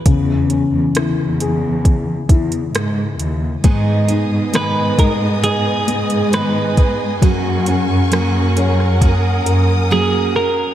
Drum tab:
HH |x-x-x-x-x-xxx-x-|x-x-x-x-x-xxx-x-|x-x-x-x-x-x-----|
SD |----r-------r---|----r-------r---|----r--r--------|
BD |o-------o-o-----|o-----o-------o-|o-------o-------|